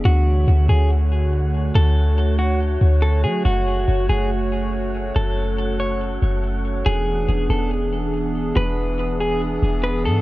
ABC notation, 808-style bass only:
X:1
M:4/4
L:1/8
Q:1/4=141
K:Emix
V:1 name="808-style bass" clef=bass
D,,2 D,, D,,4- D,, | D,,4- D,, D,,2 F, | F,,,2 F,,, F,,,4- F,,, | F,,,4- F,,, F,,,3 |
E,,,2 E,,, E,,,4- E,,, | E,,,4- E,,, E,,,2 G,, |]